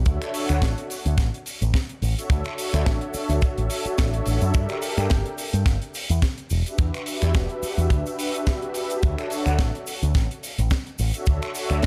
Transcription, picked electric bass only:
0.06 0.17 D2 medium
0.50 0.59 D2 loud
0.62 0.73 A1 medium
1.06 1.15 D2 medium
1.18 1.29 A1 loud
1.62 1.71 A1 medium
2.02 2.13 A1 medium
2.30 2.41 D2 loud
2.74 2.83 D2 loud
2.86 2.98 A1 loud
3.14 muted picked electric bass stroke soft
3.29 3.39 D2 medium
3.58 3.67 A1 medium
3.85 muted picked electric bass stroke soft
3.99 4.20 A1 medium
4.26 4.38 A1 medium
4.42 4.51 F#2 loud
4.55 4.66 G2 loud
4.98 5.07 G2 loud
5.11 5.22 G1 medium
5.54 5.63 G2 medium
5.66 5.77 G1 loud
6.10 6.19 E2 medium
6.51 6.62 E1 medium
6.78 6.90 E2 loud
7.22 7.31 E2 loud
7.35 7.46 E1 loud
7.63 muted picked electric bass stroke soft
7.78 7.87 E2 medium
7.90 8.02 D2 medium
9.03 9.14 D2 medium
9.46 9.56 D2 loud
9.59 9.70 A1 loud
10.03 10.12 D2 medium
10.15 10.26 A1 loud
10.59 10.68 A1 medium
10.99 11.10 A1 medium
11.27 11.38 D2 medium
11.71 11.80 D2 loud

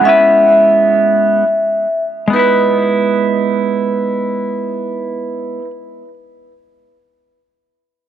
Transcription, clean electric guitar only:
0.01 1.43 G#3 medium
0.01 1.44 B3 medium
0.05 1.45 C#4 medium
0.05 1.46 E4 medium
0.05 1.47 B4 loud
2.28 5.59 G#3 medium
2.28 5.61 B3 medium
2.33 5.64 D#4 medium
2.33 5.67 E4 medium
2.39 5.70 B4 loud

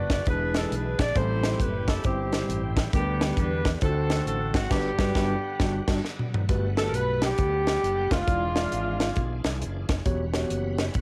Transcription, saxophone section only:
0.00 0.23 D4 medium
0.00 0.23 F#4 medium
0.00 0.24 B4 medium
0.00 0.10 D5 loud
0.12 0.26 D5 medium
0.27 1.12 D4 medium
0.27 1.12 G#4 medium
0.27 0.55 B4 loud
0.56 0.72 A4 medium
0.73 1.00 B4 medium
1.00 1.16 D5 loud
1.16 2.01 E4 medium
1.16 2.01 G4 medium
1.16 1.61 C5 medium
1.61 1.89 B4 medium
1.89 2.05 A4 medium
2.05 2.90 C4 medium
2.05 2.90 E4 medium
2.05 2.73 G4 medium
2.94 3.66 B3 medium
2.94 3.38 D4 medium
2.94 3.20 G4 medium
3.22 3.37 G4 medium
3.39 3.71 D4 medium
3.39 3.71 G4 medium
3.39 3.70 B4 loud
3.83 4.68 C4 medium
3.83 4.53 F#4 medium
3.83 4.25 A4 loud
4.27 4.53 A4 loud
4.54 4.71 F#4 medium
4.71 6.01 B3 medium
4.71 6.01 D4 medium
4.71 6.05 G4 medium
6.77 6.93 A4 medium
6.94 7.24 B4 medium
7.24 8.09 B3 medium
7.24 8.09 D4 medium
7.24 8.11 G4 medium
8.12 9.42 G#3 medium
8.12 9.42 D4 medium
8.12 9.46 F4 medium

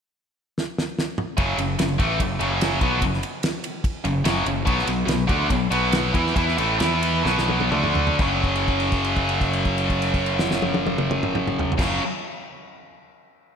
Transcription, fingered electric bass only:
1.38 1.57 F#1 medium
1.58 1.77 F#1 medium
1.80 1.98 F#1 medium
2.00 2.19 A1 medium
2.20 2.39 F#1 medium
2.40 2.79 F#1 medium
2.81 3.01 B1 medium
3.02 3.21 F#1 medium
4.05 4.24 F#1 medium
4.25 4.45 F#1 medium
4.46 4.65 F#1 medium
4.67 4.86 B1 loud
4.87 5.07 B1 medium
5.07 5.27 B1 medium
5.29 5.49 D2 loud
5.50 5.70 B1 medium
5.71 6.11 B1 medium
6.15 6.35 E2 medium
6.36 6.56 E2 medium
6.59 6.79 A1 medium
6.81 7.22 E2 medium
7.25 7.68 B1 medium
7.71 8.16 D2 medium
8.20 11.69 F#1 loud
11.79 11.99 F#1 loud

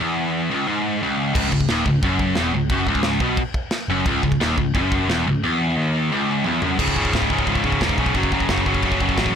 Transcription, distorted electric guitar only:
0.00 0.50 E2 medium
0.51 0.67 C#2 medium
0.68 1.01 G#2 loud
1.03 1.33 C#2 loud
1.34 1.51 C#2 loud
1.52 1.66 C#2 medium
1.71 1.86 D#2 loud
1.87 2.00 C#2 medium
2.04 2.37 F#2 loud
2.38 2.53 E2 loud
2.54 2.68 C#2 medium
2.71 2.88 F#2 loud
2.88 3.21 C#2 loud
3.22 3.38 B2 loud
3.90 4.06 F#2 loud
4.07 4.22 C#2 loud
4.24 4.38 C#2 medium
4.40 4.57 D#2 loud
4.58 4.72 C#2 medium
4.75 5.09 F#2 loud
5.09 5.26 E2 loud
5.27 5.40 C#2 medium
5.44 5.77 E2 loud
5.77 6.11 D#2 loud
6.12 6.45 C#2 loud
6.46 6.62 E2 loud
6.62 6.78 F#2 loud
6.79 6.96 C#2 loud
6.79 6.96 G#2 medium
6.79 6.96 C#3 loud
6.97 7.13 C#2 medium
6.97 7.13 G#2 medium
6.97 7.13 C#3 loud
7.14 7.31 C#2 loud
7.14 7.31 G#2 loud
7.14 7.30 C#3 loud
7.32 7.47 C#2 medium
7.32 7.48 G#2 medium
7.32 7.48 C#3 medium
7.49 7.65 C#2 medium
7.49 7.64 G#2 loud
7.49 7.64 C#3 medium
7.65 7.80 C#2 medium
7.65 7.80 G#2 loud
7.65 7.81 C#3 medium
7.81 7.98 C#2 loud
7.81 7.98 G#2 loud
7.81 7.98 C#3 loud
7.99 8.15 C#2 medium
7.99 8.15 G#2 medium
7.99 8.15 C#3 medium
8.16 8.32 F#2 medium
8.16 8.32 C#3 loud
8.16 8.32 F#3 loud
8.33 8.49 F#2 medium
8.33 8.49 C#3 medium
8.33 8.49 F#3 medium
8.50 8.66 F#2 loud
8.50 8.66 C#3 loud
8.50 8.65 F#3 loud
8.67 8.83 F#2 medium
8.67 8.84 C#3 medium
8.67 8.84 F#3 loud
8.85 9.01 F#2 medium
8.85 9.00 C#3 loud
8.85 9.00 F#3 loud
9.01 9.16 F#2 medium
9.01 9.17 C#3 medium
9.01 9.18 F#3 loud
9.18 9.34 F#2 loud
9.18 9.34 C#3 loud
9.18 9.34 F#3 loud

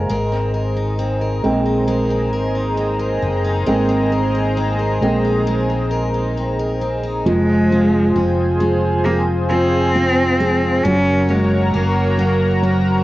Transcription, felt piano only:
0.00 0.12 G#3 medium
0.00 0.12 D#5 medium
0.00 0.12 F5 medium
0.00 0.12 F#5 medium
0.00 0.12 G#5 medium
0.00 0.12 A#5 medium
1.43 2.03 G#3 medium
1.43 2.04 A#3 soft
1.43 2.04 C4 medium
3.67 4.08 G#3 medium
3.67 4.09 A#3 soft
3.67 4.98 C4 medium
5.02 5.43 G#3 soft
5.02 5.43 A#3 soft
5.02 5.43 C4 soft
7.26 7.70 F3 medium
7.72 8.14 F3 medium
8.16 8.59 F3 medium
8.61 9.04 F3 medium
9.06 9.50 F3 medium
9.51 9.94 F3 medium
9.96 10.39 F3 medium
10.40 10.84 F3 medium
10.85 11.28 F#3 medium
11.30 11.73 F#3 medium
11.75 12.17 F#3 medium
12.18 12.61 F#3 medium
12.62 13.04 F#3 medium

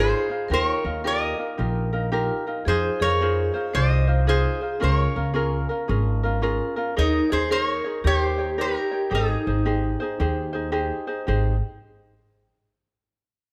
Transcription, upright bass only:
0.00 0.12 G#1 loud
0.50 0.72 D#2 loud
0.85 1.32 D#2 medium
1.59 2.29 A#1 loud
2.66 2.89 F2 medium
3.01 3.49 F2 medium
3.75 4.44 C2 loud
4.82 5.04 C#2 loud
5.16 5.64 C#2 medium
5.89 6.59 G#1 loud
6.98 7.20 D#2 loud
7.32 7.79 D#2 medium
8.04 8.74 D#2 loud
9.11 9.34 G#1 medium
9.47 9.94 G#1 medium
10.20 10.90 D#2 loud
11.28 11.60 G#1 loud

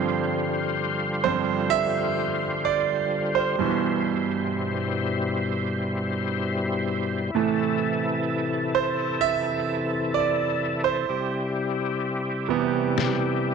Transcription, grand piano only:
0.00 1.21 G2 medium
0.00 1.21 F3 medium
0.00 1.22 C4 medium
1.24 1.68 G2 medium
1.24 1.68 F3 soft
1.24 1.68 C4 medium
1.24 1.73 C5 medium
1.70 2.68 E5 loud
2.65 3.38 D5 medium
3.35 5.19 C5 medium
3.59 7.30 G2 medium
3.59 7.31 B2 medium
3.59 7.31 E3 medium
7.35 8.71 A2 medium
7.35 8.72 E3 medium
7.35 8.72 A3 medium
8.75 8.85 C5 medium
9.21 10.18 E5 loud
10.14 10.87 D5 medium
10.84 12.69 C5 medium
12.49 13.54 C3 medium
12.49 13.54 E3 soft
12.49 13.54 B3 medium

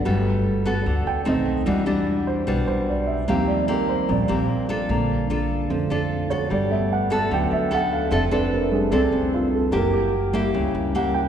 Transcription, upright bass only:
0.06 0.82 G1 medium
0.86 1.05 D2 medium
1.07 1.25 D2 medium
1.27 1.64 B1 medium
1.68 2.44 E2 medium
2.48 2.66 B1 medium
2.68 3.24 B1 medium
3.28 4.05 D#2 medium
4.09 4.28 A#1 medium
4.29 4.86 A#1 medium
4.89 5.66 A#1 medium
5.70 5.89 F2 medium
5.90 6.47 F2 medium
6.51 7.28 G1 medium
7.31 7.50 D2 medium
7.51 8.08 D2 medium
8.11 8.88 F1 loud
8.91 9.11 C2 medium
9.12 9.69 C2 medium
9.73 10.50 F#1 medium
10.54 10.73 C#2 medium
10.75 11.28 C#2 medium

